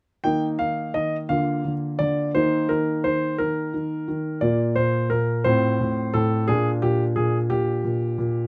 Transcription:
grand piano
0.24 D#3 A#3 D#4 G5
0.59 D#3 F5
0.94 D#3 D#5
1.29 D3 A#3 F4 F5
1.65 D3
1.99 D3 D5
2.35 D#3 A#3 D#4 C5
2.69 D#3 A#4
3.04 D#3 C5
3.38 D#3 A#4
3.74 D#3
4.08 D#3
4.41 A#2 A#3 F4 D5
4.76 A#2 C5
5.10 A#2 A#4
5.44 A2 C4 F4 C5
5.81 A2
6.14 A2 A4
6.48 A#2 D4 F4 G#4
6.82 A#2 G4
7.16 A#2 G#4
7.50 A#2 G4
7.85 A#2
8.18 A#2

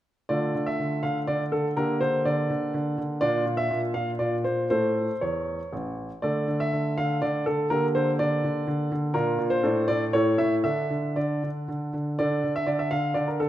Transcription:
grand piano
0.29 D3 A3 F4 D5
0.55 D3
0.66 E5
0.79 D3
1.03 D3 F5
1.27 D3 D5
1.52 D3 A4
1.77 D3 A#3 G4 A#4
2.01 D3 C5
2.25 D3 D5
2.50 D3
2.74 D3
2.98 D3
3.21 A#2 D4 F4 D5
3.46 A#2
3.57 E5
3.71 A#2
3.94 A#2 F5
4.19 A#2 D5
4.44 A#2 C5
4.70 A2 A3 A4 C5
5.21 E2 C#5
5.73 A1
6.22 D3 A3 A4 D5
6.48 D3
6.60 E5
6.73 D3
6.98 D3 F5
7.22 D3 D5
7.46 D3 A4
7.70 D3 A#3 G4 A#4
7.95 D3 C5
8.19 D3 D5
8.44 D3
8.67 D3
8.92 D3
9.14 A#2 D4 F4 A#4
9.39 A#2
9.50 C5
9.63 A2 D4 A4
9.88 A2 D5
10.13 A2 E4 A4 C#5
10.38 A2 E5
10.64 D3 D4 A4 E5
10.90 D3
11.16 D3 D5
11.43 D3
11.68 D3
11.93 D3
12.19 D3 D4 A4 D5
12.44 D3
12.56 E5
12.67 D3 D5
12.79 E5
12.91 D3 F5
13.14 D3 D5
13.28 A#4
13.40 D3 A4

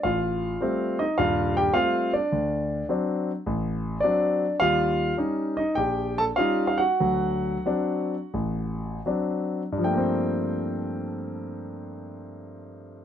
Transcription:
grand piano
0.03 A1 F4 F5
0.61 G3 A3 C4
0.99 D#4 D#5
1.18 D#1 G2 F4 F5
1.57 G4 G5
1.74 G3 A3 C4 F4 F5
2.13 D4 D5
2.32 D2
2.89 F#3 C4 D4
3.46 A1
4.00 F#3 C4 D4 D5
4.60 D#2 G3 F4 F5
5.17 G3 C#4 D#4
5.57 D#4 D#5
5.75 A#1 G4 G5
6.18 A4 A5
6.36 G3 C#4 D#4 F4 F5
6.67 F5
6.78 F#4 F#5
7.00 D2 F#3
7.66 F#3 C4 D4
8.34 A1
9.06 F#3 C4 D4
9.72 G2
9.78 F3
9.84 A3 G5
9.91 A#3
9.97 C4

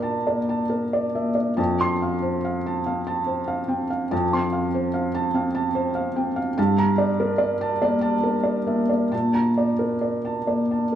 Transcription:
felt piano
Already playing: A#2 A#4 D5 A5 A#5
0.02 A5
0.27 A#3 D5
0.49 A5
0.70 A#4
0.93 D5
1.15 A#3 E5
1.35 D5
1.57 F2 A5
1.81 C6
2.02 F5
2.22 C5
2.45 F5
2.66 A5
2.86 C4 F5
3.07 A5
3.27 C5
3.48 F5
3.68 C4 G5
3.90 F5
4.11 F2 A5
4.33 C4 C6
4.53 F5
4.74 C5
4.94 F5
5.15 A5
5.34 C4 F5
5.55 A5
5.75 C5
5.95 F5
6.16 C4 G5
6.36 F5
6.58 G2 A5
6.78 A#5
6.98 D5
7.20 A#4
7.38 D5
7.61 A5
7.82 A#3 D5
8.01 A5
8.23 A#4
8.43 D5
8.67 A#3 E5
8.89 D5
9.12 A#2 A5
9.34 A#5
9.58 D5
9.79 A#4
10.01 D5
10.25 A5
10.47 A#3 D5
10.71 A5

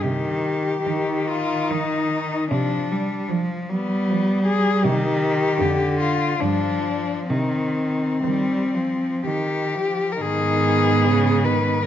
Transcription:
cello
0.02 C3 D#3 G4
0.87 D#3
1.28 F4
1.71 D#3 D#4
2.51 C3 F3 D4
2.92 G3
3.29 F3
3.70 G3 B3
4.10 F3
4.46 G#4
4.83 C3 D#3 G4
5.58 F2 D3
6.00 F4
6.39 G2 F3 D4
7.30 C3 D#3 C4
8.24 D#3 G3
8.74 F3
9.24 D#3 G4
9.75 F3
10.12 A#4
10.20 G#2 D#3 B3 G#4
11.06 C#3
11.44 D#3 B4
11.83 A#4

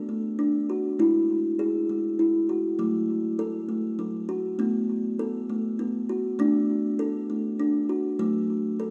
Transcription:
kalimba
Already playing: D4
0.09 A3
0.39 D4
0.70 F#4
0.99 G#3 E4
1.59 G#4
1.89 G#3
2.19 E4
2.49 F#4
2.79 F#3 A3
3.39 A4
3.69 A3
3.99 F#3
4.29 F#4
4.59 A3 B3
5.19 A4
5.49 A3
5.79 B3
6.09 F#4
6.39 A3 D4
6.99 A4
7.30 A3
7.59 D4
7.89 F#4
8.19 F#3 A3
8.80 A4

